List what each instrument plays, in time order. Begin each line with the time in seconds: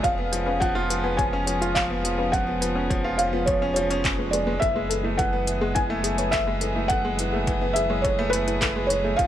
Already playing: string quartet B3 G#4
0.03 sub bass F1, upright piano F3, string quartet F3 G#3 C#4, synth arpeggio sound C#5, felt piano F5, kick, closed hi-hat
0.18 upright piano B3
0.32 upright piano F3, closed hi-hat
0.46 upright piano C#4, synth arpeggio sound B4
0.60 upright piano F3, synth arpeggio sound F4, felt piano F#5, kick, closed hi-hat
0.75 upright piano F4, synth arpeggio sound F4
0.89 upright piano F3, synth arpeggio sound B4, closed hi-hat
1.04 upright piano B3, synth arpeggio sound G#5
1.17 upright piano F3, synth arpeggio sound C#5, felt piano G#5, kick, closed hi-hat
1.32 upright piano C#4, synth arpeggio sound F5
1.47 upright piano F3, synth arpeggio sound C#5, closed hi-hat
1.61 synth arpeggio sound F4, upright piano F4, closed hi-hat
1.75 upright piano F3, synth arpeggio sound C#5, felt piano F5, kick, clap, closed hi-hat
1.90 upright piano B3
2.04 upright piano F3, closed hi-hat
2.18 upright piano C#4, synth arpeggio sound B4
2.32 upright piano F3, synth arpeggio sound F4, felt piano F#5, kick, closed hi-hat
2.47 upright piano B3, synth arpeggio sound F4
2.61 upright piano F3, synth arpeggio sound B4, closed hi-hat
2.75 upright piano C#4, synth arpeggio sound G#5
2.90 upright piano F3, synth arpeggio sound C#5, kick, closed hi-hat
3.04 upright piano F4, synth arpeggio sound F5
3.18 upright piano F3, synth arpeggio sound C#5, felt piano F5, closed hi-hat
3.33 upright piano B3, synth arpeggio sound F4
3.46 upright piano F3, felt piano C#5, synth arpeggio sound C#5, kick, closed hi-hat
3.62 upright piano C#4
3.74 upright piano F3, felt piano C#5, synth arpeggio sound F5, closed hi-hat
3.90 upright piano C#4, synth arpeggio sound C#5, closed hi-hat
4.04 upright piano C#4, synth arpeggio sound G#5, kick, clap, closed hi-hat
4.18 upright piano G#3, synth arpeggio sound B4
4.31 upright piano G#3, synth arpeggio sound B4, felt piano D5, closed hi-hat
4.47 upright piano G#3, synth arpeggio sound B4
4.60 sub bass F#1, upright piano E3, string quartet F#3 E4 G#4, synth arpeggio sound A4, felt piano E5, kick, closed hi-hat
4.75 upright piano G#3, synth arpeggio sound B4
4.90 upright piano E3, synth arpeggio sound A4, closed hi-hat
5.03 upright piano A3, synth arpeggio sound E4
5.17 upright piano E3, synth arpeggio sound A4, felt piano F#5, kick, closed hi-hat
5.33 upright piano B3
5.47 upright piano E3, closed hi-hat
5.61 upright piano G#3, synth arpeggio sound G#4
5.75 upright piano E3, synth arpeggio sound E4, felt piano G#5, kick, closed hi-hat
5.89 upright piano A3, synth arpeggio sound E4
6.04 upright piano E3, synth arpeggio sound G#4, closed hi-hat
6.18 upright piano B3, synth arpeggio sound C#5, closed hi-hat
6.31 upright piano E3, synth arpeggio sound A4, felt piano E5, kick, clap, closed hi-hat
6.47 upright piano G#3, synth arpeggio sound B4
6.61 upright piano E3, synth arpeggio sound A4, closed hi-hat
6.76 upright piano A3, synth arpeggio sound E4
6.88 upright piano E3, synth arpeggio sound A4, felt piano F#5, kick, closed hi-hat
7.05 upright piano G#3
7.19 upright piano E3, closed hi-hat
7.33 upright piano A3, synth arpeggio sound G#4
7.47 upright piano E3, synth arpeggio sound E4, kick, closed hi-hat
7.61 upright piano B3, synth arpeggio sound E4
7.73 upright piano E3, synth arpeggio sound G#4, felt piano E5, closed hi-hat
7.90 upright piano G#3, synth arpeggio sound C#5
8.02 upright piano E3, synth arpeggio sound A4, felt piano C#5, kick, closed hi-hat
8.19 upright piano A3, synth arpeggio sound B4
8.30 upright piano E3, synth arpeggio sound A4, felt piano B4, closed hi-hat
8.47 upright piano B3, synth arpeggio sound E4, closed hi-hat
8.61 upright piano E3, synth arpeggio sound A4, kick, clap, closed hi-hat
8.76 upright piano G#3
8.87 upright piano E3, felt piano C#5, closed hi-hat
9.04 upright piano A3, synth arpeggio sound G#4
9.16 sub bass F1, upright piano F3, string quartet G#3 B3 C#4, synth arpeggio sound F4, felt piano F5, kick, closed hi-hat
9.20 string quartet F3